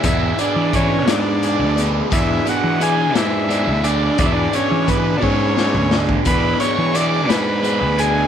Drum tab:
HH |x-x-x-x-x-x-|x-x-x-x-x-x-|x-x-x-------|x-x-x-x-x-x-|
SD |------o-----|------o-----|--------o-o-|------o-----|
T2 |------------|------------|---------o--|------------|
BD |o---o-------|o-----------|o---o-o----o|o-----------|